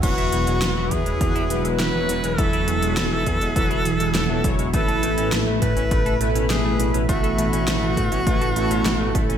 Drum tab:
CC |x---------------|----------------|----------------|----------------|
HH |xxxxx-xxxxxxx-xx|xxxxx-xxxxxxx-xx|xxxxx-xxxxxxx-xx|xxxxx-xxxxxxx-xx|
SD |----o-------o---|----o-------o---|----o-------o---|----o-------o---|
BD |o-----o-o-------|o-----o-o-----o-|o-----o-o-------|o-----o-o-----o-|